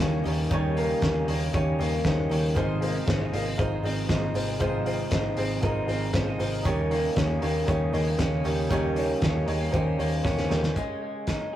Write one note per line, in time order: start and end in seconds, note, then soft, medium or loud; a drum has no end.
0.00 0.20 D#2 medium
0.00 2.52 C#3 medium
0.00 0.23 G3 medium
0.00 2.52 G3 medium
0.00 0.75 A#3 medium
0.00 2.52 A#3 medium
0.00 0.25 C#4 medium
0.00 0.50 C#4 medium
0.00 0.26 D#4 loud
0.00 6.62 D#4 loud
0.00 0.25 G4 medium
0.00 0.27 G4 loud
0.00 0.24 A#4 medium
0.00 0.02 C#5 loud
0.00 0.22 C#5 medium
0.00 0.23 D#5 medium
0.24 0.46 D#2 medium
0.24 0.49 G3 medium
0.24 0.50 C#4 medium
0.24 0.46 D#4 medium
0.24 0.50 G4 medium
0.24 0.47 G4 medium
0.24 0.51 A#4 medium
0.24 0.47 C#5 medium
0.24 0.50 D#5 medium
0.24 open hi-hat medium
0.50 0.93 D#2 loud
0.50 1.05 D#3 medium
0.50 2.29 G3 medium
0.50 1.02 A#3 medium
0.50 1.00 C#4 medium
0.50 0.72 D#4 loud
0.50 1.02 G4 loud
0.50 0.72 G4 loud
0.50 1.03 A#4 medium
0.50 0.73 C#5 loud
0.50 1.04 D#5 medium
0.50 kick loud
0.50 closed hi-hat medium
0.76 1.26 A#3 medium
0.76 0.97 D#4 medium
0.76 0.98 G4 medium
0.76 0.98 A#4 loud
0.76 open hi-hat medium
1.02 1.23 D#2 loud
1.02 1.52 C#4 medium
1.02 1.53 C#4 medium
1.02 1.23 D#4 medium
1.02 1.53 G4 medium
1.02 1.23 G4 medium
1.02 1.54 A#4 medium
1.02 1.24 C#5 medium
1.02 1.56 D#5 medium
1.02 kick loud
1.02 snare loud
1.02 closed hi-hat medium
1.28 1.49 D#2 medium
1.28 1.78 A#3 medium
1.28 1.48 D#4 medium
1.28 1.49 G4 medium
1.28 1.49 C#5 medium
1.28 open hi-hat medium
1.52 1.75 D#2 loud
1.52 1.79 C#4 medium
1.52 2.04 C#4 medium
1.52 1.74 D#4 loud
1.52 1.74 G4 medium
1.52 1.79 G4 medium
1.52 1.79 A#4 medium
1.52 1.75 C#5 loud
1.52 1.78 D#5 medium
1.52 kick loud
1.52 closed hi-hat medium
1.78 2.00 D#2 medium
1.78 2.61 A#3 medium
1.78 2.03 C#4 soft
1.78 1.99 D#4 medium
1.78 2.00 G4 medium
1.78 2.04 G4 soft
1.78 2.05 A#4 medium
1.78 2.00 C#5 medium
1.78 2.05 D#5 medium
1.78 open hi-hat medium
2.04 2.26 D#2 loud
2.04 2.30 C#4 medium
2.04 2.56 C#4 medium
2.04 2.25 D#4 medium
2.04 2.25 G4 medium
2.04 2.31 G4 medium
2.04 2.30 A#4 medium
2.04 2.26 C5 medium
2.04 2.28 D#5 medium
2.04 kick loud
2.04 snare loud
2.04 closed hi-hat medium
2.29 2.58 D#2 medium
2.29 2.56 G3 medium
2.29 2.55 C#4 medium
2.29 2.51 D#4 medium
2.29 2.51 G4 medium
2.29 2.56 G4 medium
2.29 2.56 A#4 medium
2.29 2.52 C#5 medium
2.29 2.55 D#5 medium
2.29 open hi-hat medium
2.55 2.98 G#1 loud
2.55 6.62 C3 medium
2.55 6.62 F3 medium
2.55 4.34 F3 medium
2.55 3.07 G#3 medium
2.55 6.62 G#3 medium
2.55 3.05 C4 medium
2.55 3.07 D#4 medium
2.55 2.76 F4 loud
2.55 3.06 F4 medium
2.55 2.77 G#4 loud
2.55 2.77 C5 loud
2.55 3.07 C5 medium
2.55 3.09 D#5 loud
2.55 kick loud
2.55 closed hi-hat medium
2.80 2.95 A#3 medium
2.80 3.02 F4 medium
2.80 3.02 G#4 medium
2.80 3.02 C5 loud
2.80 open hi-hat medium
2.95 3.32 C4 medium
3.06 3.29 G#1 medium
3.06 3.56 C4 medium
3.06 3.20 C#4 medium
3.06 3.27 F4 medium
3.06 3.57 F4 medium
3.06 3.28 G#4 medium
3.06 3.28 C5 loud
3.06 3.58 C5 medium
3.06 3.60 D#5 medium
3.06 kick loud
3.06 snare loud
3.06 closed hi-hat medium
3.20 3.57 D#4 medium
3.32 3.54 G#1 loud
3.32 3.46 A#3 medium
3.32 3.53 F4 medium
3.32 3.54 G#4 medium
3.32 3.54 D#5 medium
3.32 open hi-hat medium
3.46 3.83 C4 soft
3.57 3.80 G#1 loud
3.57 3.83 C4 medium
3.57 4.09 D#4 medium
3.57 3.79 F4 loud
3.57 3.84 F4 medium
3.57 3.79 G#4 loud
3.57 3.79 C5 loud
3.57 3.84 C5 medium
3.57 3.82 D#5 medium
3.57 kick loud
3.57 closed hi-hat medium
3.83 4.05 G#1 medium
3.83 4.85 C4 medium
3.83 4.04 F4 medium
3.83 4.08 F4 medium
3.83 4.05 G#4 medium
3.83 4.09 C5 medium
3.83 4.09 D#5 medium
3.83 4.05 D#5 medium
3.83 open hi-hat medium
4.08 4.30 G#1 medium
4.08 4.34 C4 medium
4.08 4.61 D#4 medium
4.08 4.30 F4 medium
4.08 4.35 F4 medium
4.08 4.30 G#4 medium
4.08 4.31 C5 loud
4.08 4.35 C5 medium
4.08 4.33 D#5 medium
4.08 kick loud
4.08 snare loud
4.08 closed hi-hat medium
4.34 4.56 G#1 medium
4.34 4.60 F3 medium
4.34 4.56 F4 medium
4.34 4.60 F4 soft
4.34 4.56 G#4 medium
4.34 4.56 C5 medium
4.34 4.60 C5 medium
4.34 4.60 D#5 medium
4.34 open hi-hat medium
4.59 5.03 G#1 loud
4.59 6.38 F3 medium
4.59 5.12 G#3 medium
4.59 5.09 C4 medium
4.59 5.11 D#4 medium
4.59 4.81 F4 loud
4.59 5.10 F4 medium
4.59 4.81 G#4 medium
4.59 5.11 C5 loud
4.59 4.82 C5 loud
4.59 5.13 D#5 loud
4.59 kick loud
4.59 closed hi-hat medium
4.85 5.36 C4 medium
4.85 5.06 F4 medium
4.85 5.07 G#4 medium
4.85 5.07 C5 medium
4.85 open hi-hat medium
5.10 5.33 G#1 loud
5.10 5.60 C4 medium
5.10 5.63 D#4 medium
5.10 5.32 F4 medium
5.10 5.62 F4 medium
5.10 5.33 G#4 medium
5.10 5.33 C5 loud
5.10 5.63 C5 medium
5.10 5.65 D#5 medium
5.10 kick loud
5.10 snare loud
5.10 closed hi-hat medium
5.36 5.59 G#1 loud
5.36 5.87 C4 medium
5.36 5.58 F4 medium
5.36 5.58 G#4 medium
5.36 5.59 C5 loud
5.36 open hi-hat medium
5.62 5.84 G#1 loud
5.62 5.88 C4 medium
5.62 6.14 D#4 medium
5.62 5.83 F4 loud
5.62 5.89 F4 medium
5.62 5.84 G#4 loud
5.62 5.84 A#4 loud
5.62 5.89 C5 medium
5.62 5.87 D#5 medium
5.62 kick loud
5.62 closed hi-hat medium
5.86 6.10 G#1 loud
5.86 6.71 C4 medium
5.86 6.08 F4 medium
5.86 6.09 G#4 medium
5.86 6.09 C5 medium
5.86 6.14 D#5 medium
5.86 open hi-hat medium
5.90 6.13 F4 soft
5.90 6.14 C5 soft
6.13 6.35 G#1 medium
6.13 6.39 C4 medium
6.13 6.27 C#4 medium
6.13 6.34 F4 medium
6.13 6.40 F4 medium
6.13 6.35 G#4 medium
6.13 6.35 C5 loud
6.13 6.40 C5 medium
6.13 6.38 D#5 medium
6.13 kick loud
6.13 snare loud
6.13 closed hi-hat medium
6.27 6.65 D#4 medium
6.38 6.61 G#1 loud
6.38 6.65 F3 medium
6.38 6.60 F4 medium
6.38 6.60 G#4 medium
6.38 6.61 C5 medium
6.38 6.66 C5 medium
6.38 6.65 D#5 medium
6.38 open hi-hat medium
6.43 6.65 F4 medium
6.63 7.08 D#2 loud
6.63 10.72 C#3 medium
6.63 7.19 D#3 loud
6.63 8.44 G3 medium
6.63 10.72 G3 medium
6.63 7.17 A#3 medium
6.63 10.72 A#3 medium
6.63 7.15 C#4 medium
6.63 7.16 C#4 medium
6.63 6.85 D#4 loud
6.63 10.72 D#4 medium
6.63 6.86 G4 loud
6.63 7.16 G4 medium
6.63 7.17 A#4 loud
6.63 6.86 C#5 loud
6.63 7.19 D#5 loud
6.63 kick loud
6.63 closed hi-hat medium
6.90 7.41 A#3 medium
6.90 7.11 D#4 medium
6.90 7.12 G4 medium
6.90 7.12 C#5 medium
6.90 open hi-hat medium
7.16 7.38 D#2 loud
7.16 7.67 C#4 medium
7.16 7.37 D#4 medium
7.16 7.37 G4 medium
7.16 7.68 G4 medium
7.16 7.69 A#4 medium
7.16 7.38 C#5 medium
7.16 7.71 D#5 medium
7.16 kick loud
7.16 snare loud
7.16 closed hi-hat medium
7.41 7.63 D#2 medium
7.41 7.93 A#3 medium
7.41 7.62 D#4 medium
7.41 7.63 G4 medium
7.41 7.63 C#5 loud
7.41 open hi-hat medium
7.66 7.89 D#2 loud
7.66 7.94 C#4 medium
7.66 8.18 C#4 medium
7.66 7.88 D#4 loud
7.66 7.88 G4 loud
7.66 7.94 G4 medium
7.66 7.89 C#5 loud
7.66 kick loud
7.66 closed hi-hat medium
7.70 7.93 A#4 medium
7.70 7.92 D#5 medium
7.92 8.15 D#2 loud
7.92 8.07 G#3 medium
7.92 8.13 D#4 medium
7.92 8.14 G4 medium
7.92 8.19 G4 medium
7.92 8.20 A#4 medium
7.92 8.14 C#5 medium
7.92 8.19 D#5 medium
7.92 open hi-hat medium
7.96 8.17 C#4 medium
8.07 8.95 A#3 medium
8.18 8.40 D#2 medium
8.18 8.45 C#4 medium
8.18 8.71 C#4 medium
8.18 8.39 D#4 medium
8.18 8.40 G4 medium
8.18 8.45 G4 medium
8.18 8.44 A#4 medium
8.18 8.40 D#5 medium
8.18 kick loud
8.18 snare loud
8.18 closed hi-hat medium
8.22 8.43 D#5 medium
8.43 8.66 D#2 loud
8.43 8.69 G3 medium
8.43 8.65 D#4 medium
8.43 8.65 G4 medium
8.43 8.70 G4 medium
8.43 8.71 A#4 medium
8.43 8.66 C#5 medium
8.43 8.70 D#5 medium
8.43 open hi-hat medium
8.48 8.70 C#4 medium
8.69 9.13 D#2 loud
8.69 9.24 D#3 medium
8.69 10.49 G3 medium
8.69 9.22 A#3 medium
8.69 9.21 C#4 loud
8.69 9.21 C#4 medium
8.69 8.91 D#4 loud
8.69 8.91 G4 loud
8.69 9.22 G4 medium
8.69 9.23 A#4 loud
8.69 8.92 C#5 loud
8.69 9.24 D#5 loud
8.69 kick loud
8.69 closed hi-hat medium
8.96 9.47 A#3 medium
8.96 9.17 D#4 medium
8.96 9.17 G4 medium
8.96 9.18 C#5 loud
8.96 open hi-hat medium
9.21 9.43 D#2 loud
9.21 9.72 C#4 medium
9.21 9.42 D#4 medium
9.21 9.43 G4 medium
9.21 9.73 G4 medium
9.21 9.74 A#4 medium
9.21 9.43 C#5 loud
9.21 9.76 D#5 medium
9.21 kick loud
9.21 snare loud
9.21 closed hi-hat medium
9.46 9.69 D#2 loud
9.46 9.60 G#3 medium
9.46 9.67 D#4 medium
9.46 9.68 G4 medium
9.46 9.68 C#5 medium
9.46 open hi-hat medium
9.60 9.98 A#3 medium
9.71 9.95 D#2 loud
9.71 10.24 C#4 medium
9.71 9.99 C#4 medium
9.71 9.93 D#4 loud
9.71 9.93 G4 loud
9.71 9.99 G4 medium
9.71 9.94 C5 loud
9.71 kick loud
9.71 closed hi-hat medium
9.75 9.99 A#4 medium
9.75 9.98 D#5 medium
9.97 10.20 D#2 medium
9.97 10.75 A#3 medium
9.97 10.19 D#4 medium
9.97 10.19 G4 medium
9.97 10.25 A#4 medium
9.97 10.20 C#5 medium
9.97 10.25 D#5 medium
9.97 open hi-hat medium
10.01 10.23 C#4 soft
10.01 10.25 G4 medium
10.22 10.46 D#2 loud
10.22 11.27 C#4 medium
10.22 10.50 C#4 medium
10.22 10.44 D#4 medium
10.22 10.45 G4 medium
10.22 10.51 G4 medium
10.22 10.45 C#5 medium
10.22 kick loud
10.22 snare medium
10.27 10.51 A#4 medium
10.27 10.49 D#5 medium
10.38 snare medium
10.49 10.72 D#2 loud
10.49 10.81 G3 medium
10.49 10.70 D#4 medium
10.49 10.71 G4 medium
10.49 10.77 G4 medium
10.49 10.77 A#4 medium
10.49 10.71 C#5 medium
10.49 10.76 D#5 medium
10.49 snare medium
10.54 10.76 C#4 soft
10.63 snare medium
10.76 11.26 C#3 medium
10.76 11.00 G#3 medium
10.76 11.27 G#3 medium
10.76 11.28 C#4 medium
10.76 11.30 D#4 medium
10.76 11.52 G#4 medium
10.76 kick medium
10.76 closed hi-hat medium
11.01 11.56 G#3 medium
11.27 11.56 C#3 medium
11.27 11.56 G#3 medium
11.27 11.56 C#4 medium
11.27 11.56 D#4 medium
11.27 kick loud
11.27 snare medium
11.27 closed hi-hat medium